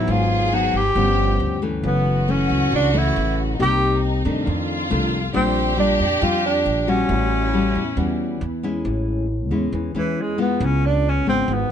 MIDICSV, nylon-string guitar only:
0, 0, Header, 1, 2, 480
1, 0, Start_track
1, 0, Tempo, 438596
1, 82, Time_signature, 4, 2, 24, 8
1, 12821, End_track
2, 0, Start_track
2, 0, Title_t, "Nylon-string guitar"
2, 0, Program_c, 0, 24
2, 0, Note_on_c, 0, 54, 64
2, 0, Note_on_c, 0, 59, 65
2, 0, Note_on_c, 0, 63, 65
2, 91, Note_on_c, 0, 44, 57
2, 530, Note_off_c, 0, 54, 0
2, 534, Note_off_c, 0, 59, 0
2, 535, Note_off_c, 0, 63, 0
2, 572, Note_on_c, 0, 54, 59
2, 578, Note_on_c, 0, 59, 59
2, 584, Note_on_c, 0, 63, 67
2, 877, Note_off_c, 0, 54, 0
2, 880, Note_off_c, 0, 59, 0
2, 883, Note_off_c, 0, 63, 0
2, 1025, Note_off_c, 0, 44, 0
2, 1054, Note_on_c, 0, 43, 54
2, 1056, Note_on_c, 0, 53, 50
2, 1059, Note_on_c, 0, 59, 46
2, 1064, Note_on_c, 0, 61, 55
2, 1733, Note_off_c, 0, 53, 0
2, 1733, Note_off_c, 0, 59, 0
2, 1737, Note_off_c, 0, 61, 0
2, 1772, Note_on_c, 0, 52, 63
2, 1778, Note_on_c, 0, 57, 66
2, 1783, Note_on_c, 0, 61, 64
2, 1987, Note_off_c, 0, 43, 0
2, 2017, Note_on_c, 0, 42, 51
2, 2451, Note_off_c, 0, 52, 0
2, 2454, Note_off_c, 0, 57, 0
2, 2455, Note_off_c, 0, 61, 0
2, 2495, Note_on_c, 0, 52, 61
2, 2499, Note_on_c, 0, 57, 56
2, 2504, Note_on_c, 0, 61, 62
2, 2948, Note_off_c, 0, 42, 0
2, 2978, Note_on_c, 0, 49, 55
2, 3172, Note_off_c, 0, 52, 0
2, 3175, Note_off_c, 0, 57, 0
2, 3176, Note_off_c, 0, 61, 0
2, 3214, Note_on_c, 0, 52, 66
2, 3216, Note_on_c, 0, 57, 61
2, 3222, Note_on_c, 0, 61, 67
2, 3891, Note_off_c, 0, 52, 0
2, 3894, Note_off_c, 0, 57, 0
2, 3895, Note_off_c, 0, 61, 0
2, 3908, Note_off_c, 0, 49, 0
2, 3932, Note_on_c, 0, 48, 54
2, 3932, Note_on_c, 0, 58, 53
2, 3936, Note_on_c, 0, 63, 55
2, 3940, Note_on_c, 0, 67, 65
2, 4609, Note_off_c, 0, 58, 0
2, 4612, Note_off_c, 0, 63, 0
2, 4614, Note_off_c, 0, 67, 0
2, 4652, Note_on_c, 0, 51, 55
2, 4657, Note_on_c, 0, 57, 53
2, 4660, Note_on_c, 0, 62, 63
2, 4865, Note_off_c, 0, 48, 0
2, 4884, Note_on_c, 0, 41, 56
2, 5330, Note_off_c, 0, 51, 0
2, 5331, Note_off_c, 0, 57, 0
2, 5334, Note_off_c, 0, 62, 0
2, 5365, Note_on_c, 0, 51, 62
2, 5369, Note_on_c, 0, 57, 60
2, 5375, Note_on_c, 0, 62, 61
2, 5674, Note_off_c, 0, 51, 0
2, 5675, Note_off_c, 0, 57, 0
2, 5676, Note_off_c, 0, 62, 0
2, 5820, Note_off_c, 0, 41, 0
2, 5835, Note_on_c, 0, 46, 58
2, 5837, Note_on_c, 0, 55, 52
2, 5841, Note_on_c, 0, 62, 56
2, 5848, Note_on_c, 0, 65, 64
2, 6281, Note_off_c, 0, 55, 0
2, 6282, Note_off_c, 0, 62, 0
2, 6287, Note_off_c, 0, 65, 0
2, 6316, Note_on_c, 0, 55, 57
2, 6321, Note_on_c, 0, 62, 60
2, 6326, Note_on_c, 0, 65, 70
2, 6629, Note_off_c, 0, 55, 0
2, 6630, Note_off_c, 0, 62, 0
2, 6633, Note_off_c, 0, 65, 0
2, 6774, Note_off_c, 0, 46, 0
2, 6801, Note_on_c, 0, 53, 55
2, 6804, Note_on_c, 0, 55, 47
2, 6807, Note_on_c, 0, 62, 57
2, 6813, Note_on_c, 0, 65, 60
2, 7482, Note_off_c, 0, 55, 0
2, 7486, Note_off_c, 0, 62, 0
2, 7488, Note_off_c, 0, 65, 0
2, 7523, Note_on_c, 0, 55, 61
2, 7529, Note_on_c, 0, 61, 61
2, 7531, Note_on_c, 0, 66, 76
2, 7737, Note_off_c, 0, 53, 0
2, 7769, Note_on_c, 0, 45, 54
2, 8203, Note_off_c, 0, 55, 0
2, 8205, Note_off_c, 0, 61, 0
2, 8207, Note_off_c, 0, 66, 0
2, 8247, Note_on_c, 0, 55, 55
2, 8256, Note_on_c, 0, 61, 55
2, 8257, Note_on_c, 0, 66, 62
2, 8553, Note_off_c, 0, 55, 0
2, 8555, Note_off_c, 0, 61, 0
2, 8558, Note_off_c, 0, 66, 0
2, 8700, Note_off_c, 0, 45, 0
2, 8720, Note_on_c, 0, 52, 53
2, 8723, Note_on_c, 0, 55, 57
2, 8728, Note_on_c, 0, 61, 49
2, 8732, Note_on_c, 0, 66, 57
2, 9197, Note_off_c, 0, 55, 0
2, 9201, Note_off_c, 0, 61, 0
2, 9203, Note_off_c, 0, 66, 0
2, 9449, Note_on_c, 0, 56, 59
2, 9453, Note_on_c, 0, 61, 60
2, 9459, Note_on_c, 0, 64, 75
2, 9656, Note_off_c, 0, 52, 0
2, 9686, Note_on_c, 0, 45, 53
2, 10126, Note_off_c, 0, 56, 0
2, 10128, Note_off_c, 0, 61, 0
2, 10130, Note_off_c, 0, 64, 0
2, 10407, Note_on_c, 0, 56, 54
2, 10412, Note_on_c, 0, 61, 57
2, 10416, Note_on_c, 0, 64, 52
2, 10619, Note_off_c, 0, 45, 0
2, 10652, Note_on_c, 0, 52, 51
2, 10845, Note_off_c, 0, 56, 0
2, 10846, Note_off_c, 0, 61, 0
2, 10850, Note_off_c, 0, 64, 0
2, 10886, Note_on_c, 0, 56, 60
2, 10896, Note_on_c, 0, 61, 61
2, 10899, Note_on_c, 0, 64, 59
2, 11326, Note_off_c, 0, 56, 0
2, 11328, Note_off_c, 0, 61, 0
2, 11332, Note_off_c, 0, 64, 0
2, 11360, Note_on_c, 0, 56, 57
2, 11364, Note_on_c, 0, 59, 55
2, 11370, Note_on_c, 0, 65, 68
2, 11583, Note_off_c, 0, 52, 0
2, 11607, Note_on_c, 0, 49, 54
2, 12284, Note_off_c, 0, 56, 0
2, 12284, Note_off_c, 0, 59, 0
2, 12288, Note_off_c, 0, 65, 0
2, 12329, Note_on_c, 0, 56, 59
2, 12335, Note_on_c, 0, 59, 58
2, 12340, Note_on_c, 0, 65, 55
2, 12541, Note_off_c, 0, 49, 0
2, 12570, Note_on_c, 0, 44, 50
2, 12768, Note_off_c, 0, 56, 0
2, 12771, Note_off_c, 0, 59, 0
2, 12772, Note_off_c, 0, 65, 0
2, 12821, Note_off_c, 0, 44, 0
2, 12821, End_track
0, 0, End_of_file